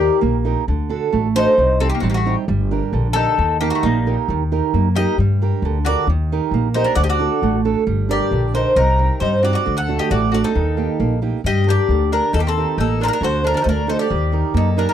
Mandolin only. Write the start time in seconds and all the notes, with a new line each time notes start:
Already playing: G4
1.38 D#4
1.81 C4
1.95 A#3
2.03 C4
2.11 A#3
2.17 A3
3.16 D#4
3.61 A#3
3.75 A3
3.86 G3
4.95 G4
5.85 F#4
6.75 D#4
6.85 D4
6.95 F#4
7.03 G4
7.09 F#4
8.12 G4
8.56 D#4
8.77 D#4
9.22 D#4
9.43 F#4
9.53 F#4
9.77 A4
9.99 G4
10.11 F#4
10.32 F#4
10.44 D#4
11.47 G4
11.69 G4
12.12 D4
12.33 D#4
12.39 A#3
12.47 C4
12.78 D#4
13.01 C4 D4
13.07 D4
13.13 D4
13.23 F#4
13.44 D4
13.54 D4
13.62 D#4
13.69 D4
13.89 D#4
14.01 G4
14.57 D#4
14.78 D4
14.90 D4